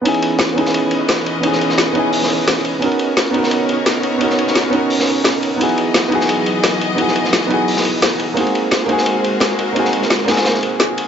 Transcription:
<<
  \new Staff \with { instrumentName = "String section" } { \time 4/4 \key cis \dorian \tempo 4 = 173 <e cis' b' dis''>1~ | <e cis' b' dis''>1 | <b dis' ais' cis''>1~ | <b dis' ais' cis''>1 |
<e fis gis' dis''>1~ | <e fis gis' dis''>1 | <gis fis' ais' bis'>1~ | <gis fis' ais' bis'>1 | }
  \new Staff \with { instrumentName = "Grand piano" } { \time 4/4 \key cis \dorian <b cis' dis' e' gis'>4. <b cis' dis' e' gis'>2~ <b cis' dis' e' gis'>8 | <b cis' dis' e' gis'>4. <b cis' dis' e' gis'>2~ <b cis' dis' e' gis'>8 | <b cis' dis' fis' ais'>4. <b cis' dis' fis' ais'>2~ <b cis' dis' fis' ais'>8 | <b cis' dis' fis' ais'>4. <b cis' dis' fis' ais'>2~ <b cis' dis' fis' ais'>8 |
<b dis' e' fis' gis'>4. <b dis' e' fis' gis'>2~ <b dis' e' fis' gis'>8 | <b dis' e' fis' gis'>4. <b dis' e' fis' gis'>2~ <b dis' e' fis' gis'>8 | <ais bis dis' fis' gis'>4. <ais bis dis' fis' gis'>2~ <ais bis dis' fis' gis'>8 | <ais bis dis' fis' gis'>4. <ais bis dis' fis' gis'>2~ <ais bis dis' fis' gis'>8 | }
  \new DrumStaff \with { instrumentName = "Drums" } \drummode { \time 4/4 cymr16 cymr16 cymr8 <cymr sn>8 cymr16 sn16 cymr8 cymr8 <cymr sn>8 cymr8 | cymr16 sn16 cymr16 sn16 <cymr sn>8 cymr8 hho16 sn16 cymr8 <cymr sn>8 cymr8 | cymr16 cymr16 cymr8 <cymr sn>8 cymr16 sn16 cymr8 cymr8 <cymr sn>8 cymr8 | cymr16 sn16 cymr16 sn16 <cymr sn>8 cymr8 hho16 sn16 cymr8 <cymr sn>8 cymr8 |
cymr16 cymr16 cymr8 <cymr sn>8 cymr16 sn16 cymr8 cymr8 <cymr sn>8 cymr8 | cymr16 sn16 cymr16 sn16 <cymr sn>8 cymr8 hho16 sn16 cymr8 <cymr sn>8 cymr8 | cymr16 cymr16 cymr8 <cymr sn>8 cymr16 sn16 cymr8 cymr8 <cymr sn>8 cymr8 | cymr16 sn16 cymr16 sn16 <cymr sn>8 <cymr sn>16 <cymr sn>16 <cymr sn>16 sn16 cymr8 sn8 cymr8 | }
>>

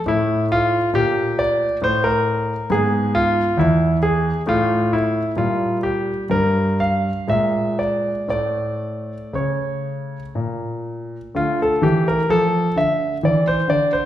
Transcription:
<<
  \new Staff \with { instrumentName = "Grand piano" } { \time 3/4 \key d \minor \tempo 4 = 65 e'8 f'8 g'8 d''8 c''16 bes'8. | gis'8 f'8 e'8 gis'8 f'8 e'8 | f'8 g'8 bes'8 f''8 e''8 d''8 | d''4 cis''4 r4 |
f'16 a'16 g'16 bes'16 a'8 e''8 d''16 c''16 d''16 c''16 | }
  \new Staff \with { instrumentName = "Grand piano" } { \clef bass \time 3/4 \key d \minor << { a2. | b2 a4 | g2 aes4 | a2. |
a2. | } \\ { a,4 bes,4 a,4 | gis,4 e,4 a,4 | bes,4 g,4 bes,4 | a,4 cis4 bes,4 |
d8 e8 f8 d8 e8 d8 | } >> }
>>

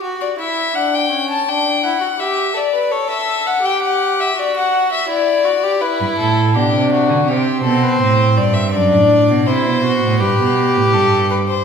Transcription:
<<
  \new Staff \with { instrumentName = "Violin" } { \time 4/4 \key g \major \tempo 4 = 82 r16 d''16 e''8 fis''16 g''8 a''16 g''8 fis''8 e''8 d''8 | cis''16 e''8 fis''16 g''16 fis''8 e''16 d''16 fis''8 e''16 d''4 | b'8 a'8 g'8 fis'8 g'8 a'16 b'16 c''8 d''16 e''16 | d''4 c''4 b'4 a'8 b'16 c''16 | }
  \new Staff \with { instrumentName = "Violin" } { \time 4/4 \key g \major fis'8 e'8 d'8 cis'8 d'8 e'16 fis'16 g'8 a'16 b'16 | a'4 g'4 fis'4 e'8 fis'16 g'16 | e'4 d'4 c'2 | d'4 e'8 fis'8 g'2 | }
  \new Staff \with { instrumentName = "Cello" } { \clef bass \time 4/4 \key g \major r1 | r1 | r16 g,16 a,8 b,16 c8 d16 c8 b,8 a,8 g,8 | fis,16 a,8 b,16 c16 b,8 a,16 g,16 b,8 a,16 g,4 | }
>>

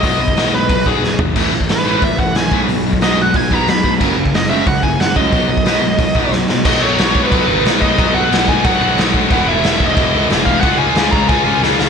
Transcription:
<<
  \new Staff \with { instrumentName = "Lead electric guitar" } { \time 4/4 \key b \major \tempo 4 = 181 dis''4. b'4 gis'4 r8 | r4 b'4 e''8 fis''8 gis''8. r16 | r4 dis''8 fis''8 gis''8 ais''8 b''8. r16 | r4 dis''8 e''8 fis''8 gis''8 fis''8 dis''8~ |
dis''2. r4 | dis''8 cis''4~ cis''16 b'4~ b'16 r8 dis''8~ | dis''8 fis''4 gis''8 fis''4 r4 | fis''8 e''4~ e''16 dis''4~ dis''16 r8 eis''8 |
fis''8 gis''4 ais''8 gis''4 r4 | }
  \new Staff \with { instrumentName = "Distorted electric guitar" } { \clef bass \time 4/4 \key b \major r1 | r1 | r1 | r1 |
r1 | <b, dis fis b dis'>2~ <b, dis fis b dis'>8 <b, dis fis b dis'>8 <b, dis fis b dis'>4 | <b, dis fis b dis'>2~ <b, dis fis b dis'>8 <b, dis fis b dis'>8 <b, dis fis b dis'>4 | <e gis b e'>2~ <e gis b e'>8 <e gis b e'>8 <e gis b e'>4 |
<cis gis cis' eis'>2~ <cis gis cis' eis'>8 <cis gis cis' eis'>8 <cis gis cis' eis'>4 | }
  \new Staff \with { instrumentName = "Distorted electric guitar" } { \clef bass \time 4/4 \key b \major <b, fis b>8 <b, fis>8 <b, fis b>8 <b, fis>8 <b, fis>8 <b, fis b>8 <b, fis>8 <b, fis>8 | <a, e a>8 <a, e>8 <a, e>8 <a, e a>8 <a, e>8 <a, e>8 <a, e>8 <b, fis b>8 | <b, fis>8 <b, fis>8 <b, fis b>8 <b, fis>8 <b, fis>8 <b, fis b>8 <b, fis>8 <b, fis>8 | <fis, cis fis>8 <fis, cis>8 <fis, cis>8 <fis, cis fis>8 <fis, cis>8 <fis, cis>8 <fis, cis>8 <fis, cis fis>8 |
<b, fis b>8 <b, fis>8 <b, fis b>8 <b, fis>8 <b, fis>8 <b, fis b>8 <b, fis>8 <b, fis>8 | <b, fis b>2 <b, fis b>2 | <b, fis b>2 <b, fis b>2 | <e, b, e>2 <e, b, e>2 |
<cis gis cis'>2 <cis gis cis'>2 | }
  \new Staff \with { instrumentName = "Overdriven electric guitar" } { \clef bass \time 4/4 \key b \major r1 | <a, e a>8 <a, e>8 <a, e>8 <a, e a>8 <a, e>8 <a, e>8 <a, e>8 <b, fis b>8 | <b, fis>8 <b, fis>8 <b, fis b>8 <b, fis>8 <b, fis>8 <b, fis b>8 <b, fis>8 <b, fis>8 | <fis, cis fis>8 <fis, cis>8 <fis, cis>8 <fis, cis fis>8 <fis, cis>8 <fis, cis>8 <fis, cis>8 <fis, cis fis>8 |
<b, fis b>8 <b, fis>8 <b, fis b>8 <b, fis>8 <b, fis>8 <b, fis b>8 <b, fis>8 <b, fis>8 | r1 | r1 | r1 |
r1 | }
  \new Staff \with { instrumentName = "Picked electric bass" } { \clef bass \time 4/4 \key b \major b,,8 b,,8 b,,8 b,,8 b,,8 b,,8 b,,8 gis,,8 | a,,8 a,,8 a,,4 e,8 a,,8 ais,,8 b,,8 | b,,8 b,,8 b,,8 b,,8 b,,8 b,,8 b,,8 b,8 | fis,,8 fis,,8 fis,,4 cis,8 fis,,8 fis,,8 cis,8 |
b,,8 b,,8 b,,8 b,,8 b,,8 b,,8 b,,8 b,8 | b,,4 b,,4 b,,8 gis,,8 b,,4 | b,,4 b,,4 b,,8 b,,8 b,,4 | e,,4 e,,4 e,,8 cis,8 e,,4 |
cis,4 cis,4 cis,8 cis,8 cis,4 | }
  \new DrumStaff \with { instrumentName = "Drums" } \drummode { \time 4/4 <hho bd>8. bd16 <hho sn>4 <hho bd>8 bd8 sn8 tomfh8 | <cymc hho bd>8. bd16 <hho sn>4 <hho bd>8 bd8 <hho sn>8 bd8 | hho8. bd16 <hho sn>4 <hho bd>8 bd8 <hho sn>8 bd8 | <cymc bd>8. bd16 <hho sn>4 <hho bd>8 bd8 <hho sn>8 bd8 |
<hho bd>8. bd16 <hho sn>4 <hho bd>8 bd8 sn8 sn8 | <cymc bd>4 <cymc sn>8 bd8 <cymc bd>4 <cymc sn>8 bd8 | <cymc bd>4 <cymc sn>8 bd8 <cymc bd>4 <cymc sn>8 bd8 | <cymc bd>4 <cymc sn>8 bd8 <cymc bd>4 <cymc sn>8 bd8 |
<cymc bd>4 <cymc sn>8 bd8 <cymc bd>4 sn8 sn8 | }
>>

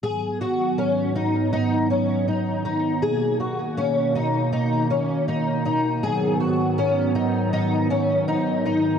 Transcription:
<<
  \new Staff \with { instrumentName = "Twelve-string acoustic guitar" } { \time 4/4 \key gis \minor \tempo 4 = 80 gis'8 fis'8 cis'8 dis'8 dis'8 cis'8 dis'8 dis'8 | gis'8 fis'8 cis'8 dis'8 dis'8 cis'8 dis'8 dis'8 | gis'8 fis'8 cis'8 dis'8 dis'8 cis'8 dis'8 dis'8 | }
  \new Staff \with { instrumentName = "Analog synth pad" } { \clef bass \time 4/4 \key gis \minor <gis, dis fis b>1 | <b, ais>1 | <gis, fis b>1 | }
>>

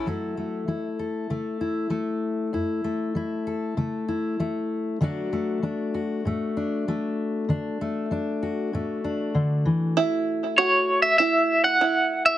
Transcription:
<<
  \new Staff \with { instrumentName = "Clean electric guitar" } { \time 4/4 \key fis \minor \tempo 4 = 97 r1 | r1 | r1 | r1 |
r4 cis''8. e''16 e''8. fis''4 e''16 | }
  \new Staff \with { instrumentName = "Five-string banjo" } { \time 4/4 \key fis \minor r1 | r1 | r1 | r1 |
e'4 fis'4 e'4 e'4 | }
  \new Staff \with { instrumentName = "Steel-string acoustic guitar" } { \time 4/4 \key fis \minor << { <fis a e' a'>8 a8 e'8 a'8 a8 e'8 a4 | e'8 a8 e'8 a'8 a8 e'8 a4 | <fis a d' fis'>8 a8 d'8 fis'8 a8 d'8 a4 | d'8 a8 d'8 fis'8 a8 d'4. |
r1 | } \\ { fis,4 fis4 cis4 fis4 | fis,4 fis4 cis4 fis4 | d4 fis4 a,4 fis4 | d4 fis4 a,4 d8 e8 |
r1 | } >> }
>>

